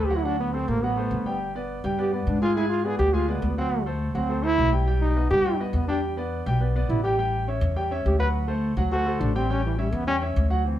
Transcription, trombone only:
0, 0, Header, 1, 2, 480
1, 0, Start_track
1, 0, Tempo, 288739
1, 417, Time_signature, 4, 2, 24, 8
1, 17942, End_track
2, 0, Start_track
2, 0, Title_t, "Trombone"
2, 0, Program_c, 0, 57
2, 97, Note_on_c, 0, 67, 88
2, 280, Note_on_c, 0, 64, 87
2, 305, Note_off_c, 0, 67, 0
2, 419, Note_on_c, 0, 62, 88
2, 444, Note_off_c, 0, 64, 0
2, 654, Note_off_c, 0, 62, 0
2, 664, Note_on_c, 0, 59, 89
2, 892, Note_on_c, 0, 60, 104
2, 917, Note_off_c, 0, 59, 0
2, 1143, Note_on_c, 0, 58, 96
2, 1168, Note_off_c, 0, 60, 0
2, 1389, Note_on_c, 0, 59, 96
2, 1414, Note_off_c, 0, 58, 0
2, 2344, Note_off_c, 0, 59, 0
2, 3319, Note_on_c, 0, 67, 89
2, 3533, Note_off_c, 0, 67, 0
2, 3566, Note_on_c, 0, 59, 53
2, 3773, Note_on_c, 0, 62, 79
2, 3798, Note_off_c, 0, 59, 0
2, 4016, Note_off_c, 0, 62, 0
2, 4027, Note_on_c, 0, 65, 106
2, 4249, Note_on_c, 0, 64, 94
2, 4274, Note_off_c, 0, 65, 0
2, 4463, Note_off_c, 0, 64, 0
2, 4473, Note_on_c, 0, 65, 93
2, 4735, Note_on_c, 0, 68, 97
2, 4759, Note_off_c, 0, 65, 0
2, 4958, Note_off_c, 0, 68, 0
2, 4968, Note_on_c, 0, 67, 101
2, 5213, Note_on_c, 0, 65, 99
2, 5238, Note_off_c, 0, 67, 0
2, 5456, Note_off_c, 0, 65, 0
2, 5475, Note_on_c, 0, 56, 80
2, 5720, Note_on_c, 0, 59, 72
2, 5745, Note_off_c, 0, 56, 0
2, 5945, Note_off_c, 0, 59, 0
2, 5955, Note_on_c, 0, 60, 83
2, 6395, Note_off_c, 0, 60, 0
2, 6917, Note_on_c, 0, 60, 97
2, 7384, Note_on_c, 0, 64, 120
2, 7409, Note_off_c, 0, 60, 0
2, 7862, Note_off_c, 0, 64, 0
2, 8332, Note_on_c, 0, 63, 89
2, 8782, Note_off_c, 0, 63, 0
2, 8817, Note_on_c, 0, 67, 111
2, 9265, Note_off_c, 0, 67, 0
2, 9552, Note_on_c, 0, 59, 74
2, 9763, Note_off_c, 0, 59, 0
2, 9773, Note_on_c, 0, 62, 93
2, 10000, Note_off_c, 0, 62, 0
2, 11454, Note_on_c, 0, 64, 80
2, 11680, Note_off_c, 0, 64, 0
2, 11693, Note_on_c, 0, 67, 90
2, 11920, Note_off_c, 0, 67, 0
2, 13401, Note_on_c, 0, 67, 82
2, 13614, Note_off_c, 0, 67, 0
2, 13627, Note_on_c, 0, 71, 100
2, 13769, Note_off_c, 0, 71, 0
2, 14831, Note_on_c, 0, 66, 107
2, 15307, Note_on_c, 0, 62, 83
2, 15332, Note_off_c, 0, 66, 0
2, 15543, Note_off_c, 0, 62, 0
2, 15559, Note_on_c, 0, 60, 95
2, 15807, Note_on_c, 0, 61, 116
2, 15832, Note_off_c, 0, 60, 0
2, 16033, Note_off_c, 0, 61, 0
2, 16050, Note_on_c, 0, 52, 75
2, 16273, Note_on_c, 0, 55, 80
2, 16298, Note_off_c, 0, 52, 0
2, 16508, Note_on_c, 0, 59, 94
2, 16533, Note_off_c, 0, 55, 0
2, 16740, Note_off_c, 0, 59, 0
2, 16750, Note_on_c, 0, 61, 110
2, 16891, Note_off_c, 0, 61, 0
2, 17942, End_track
0, 0, End_of_file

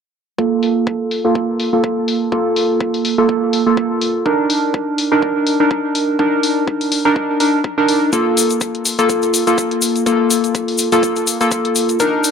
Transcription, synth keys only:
0, 0, Header, 1, 2, 480
1, 0, Start_track
1, 0, Tempo, 483871
1, 383, Time_signature, 4, 2, 24, 8
1, 12213, End_track
2, 0, Start_track
2, 0, Title_t, "Synth keys"
2, 0, Program_c, 0, 88
2, 381, Note_on_c, 0, 58, 84
2, 382, Note_on_c, 0, 65, 79
2, 383, Note_on_c, 0, 69, 94
2, 1203, Note_off_c, 0, 58, 0
2, 1204, Note_off_c, 0, 65, 0
2, 1204, Note_off_c, 0, 69, 0
2, 1235, Note_on_c, 0, 58, 88
2, 1236, Note_on_c, 0, 65, 77
2, 1236, Note_on_c, 0, 69, 88
2, 1684, Note_off_c, 0, 58, 0
2, 1684, Note_off_c, 0, 65, 0
2, 1684, Note_off_c, 0, 69, 0
2, 1715, Note_on_c, 0, 58, 82
2, 1716, Note_on_c, 0, 65, 67
2, 1716, Note_on_c, 0, 69, 84
2, 2276, Note_off_c, 0, 58, 0
2, 2277, Note_off_c, 0, 65, 0
2, 2277, Note_off_c, 0, 69, 0
2, 2302, Note_on_c, 0, 58, 88
2, 2302, Note_on_c, 0, 65, 82
2, 2303, Note_on_c, 0, 69, 92
2, 3124, Note_off_c, 0, 58, 0
2, 3124, Note_off_c, 0, 65, 0
2, 3124, Note_off_c, 0, 69, 0
2, 3156, Note_on_c, 0, 58, 84
2, 3156, Note_on_c, 0, 65, 78
2, 3157, Note_on_c, 0, 69, 95
2, 3604, Note_off_c, 0, 58, 0
2, 3604, Note_off_c, 0, 65, 0
2, 3604, Note_off_c, 0, 69, 0
2, 3635, Note_on_c, 0, 58, 76
2, 3636, Note_on_c, 0, 65, 72
2, 3637, Note_on_c, 0, 69, 85
2, 4197, Note_off_c, 0, 58, 0
2, 4197, Note_off_c, 0, 65, 0
2, 4197, Note_off_c, 0, 69, 0
2, 4222, Note_on_c, 0, 62, 88
2, 4222, Note_on_c, 0, 63, 80
2, 4224, Note_on_c, 0, 70, 95
2, 5044, Note_off_c, 0, 62, 0
2, 5044, Note_off_c, 0, 63, 0
2, 5045, Note_off_c, 0, 70, 0
2, 5075, Note_on_c, 0, 62, 89
2, 5075, Note_on_c, 0, 63, 78
2, 5076, Note_on_c, 0, 70, 96
2, 5523, Note_off_c, 0, 62, 0
2, 5524, Note_off_c, 0, 63, 0
2, 5524, Note_off_c, 0, 70, 0
2, 5555, Note_on_c, 0, 62, 74
2, 5556, Note_on_c, 0, 63, 72
2, 5556, Note_on_c, 0, 70, 84
2, 6116, Note_off_c, 0, 62, 0
2, 6117, Note_off_c, 0, 63, 0
2, 6117, Note_off_c, 0, 70, 0
2, 6141, Note_on_c, 0, 62, 86
2, 6142, Note_on_c, 0, 63, 75
2, 6143, Note_on_c, 0, 70, 96
2, 6963, Note_off_c, 0, 62, 0
2, 6964, Note_off_c, 0, 63, 0
2, 6964, Note_off_c, 0, 70, 0
2, 6995, Note_on_c, 0, 62, 84
2, 6996, Note_on_c, 0, 63, 79
2, 6996, Note_on_c, 0, 70, 89
2, 7321, Note_off_c, 0, 62, 0
2, 7321, Note_off_c, 0, 63, 0
2, 7321, Note_off_c, 0, 70, 0
2, 7342, Note_on_c, 0, 62, 67
2, 7343, Note_on_c, 0, 63, 58
2, 7343, Note_on_c, 0, 70, 75
2, 7535, Note_off_c, 0, 62, 0
2, 7536, Note_off_c, 0, 63, 0
2, 7536, Note_off_c, 0, 70, 0
2, 7714, Note_on_c, 0, 62, 87
2, 7715, Note_on_c, 0, 63, 81
2, 7715, Note_on_c, 0, 70, 91
2, 8036, Note_off_c, 0, 62, 0
2, 8036, Note_off_c, 0, 63, 0
2, 8037, Note_off_c, 0, 70, 0
2, 8061, Note_on_c, 0, 58, 90
2, 8062, Note_on_c, 0, 65, 78
2, 8062, Note_on_c, 0, 69, 95
2, 8883, Note_off_c, 0, 58, 0
2, 8884, Note_off_c, 0, 65, 0
2, 8884, Note_off_c, 0, 69, 0
2, 8915, Note_on_c, 0, 58, 86
2, 8915, Note_on_c, 0, 65, 77
2, 8916, Note_on_c, 0, 69, 98
2, 9363, Note_off_c, 0, 58, 0
2, 9364, Note_off_c, 0, 65, 0
2, 9364, Note_off_c, 0, 69, 0
2, 9395, Note_on_c, 0, 58, 77
2, 9396, Note_on_c, 0, 65, 73
2, 9397, Note_on_c, 0, 69, 88
2, 9957, Note_off_c, 0, 58, 0
2, 9957, Note_off_c, 0, 65, 0
2, 9957, Note_off_c, 0, 69, 0
2, 9981, Note_on_c, 0, 58, 88
2, 9982, Note_on_c, 0, 65, 77
2, 9984, Note_on_c, 0, 69, 91
2, 10803, Note_off_c, 0, 58, 0
2, 10804, Note_off_c, 0, 65, 0
2, 10805, Note_off_c, 0, 69, 0
2, 10836, Note_on_c, 0, 58, 84
2, 10837, Note_on_c, 0, 65, 83
2, 10837, Note_on_c, 0, 69, 99
2, 11284, Note_off_c, 0, 58, 0
2, 11284, Note_off_c, 0, 65, 0
2, 11284, Note_off_c, 0, 69, 0
2, 11315, Note_on_c, 0, 58, 80
2, 11316, Note_on_c, 0, 65, 72
2, 11317, Note_on_c, 0, 69, 89
2, 11877, Note_off_c, 0, 58, 0
2, 11877, Note_off_c, 0, 65, 0
2, 11878, Note_off_c, 0, 69, 0
2, 11902, Note_on_c, 0, 62, 90
2, 11903, Note_on_c, 0, 63, 82
2, 11904, Note_on_c, 0, 70, 100
2, 12213, Note_off_c, 0, 62, 0
2, 12213, Note_off_c, 0, 63, 0
2, 12213, Note_off_c, 0, 70, 0
2, 12213, End_track
0, 0, End_of_file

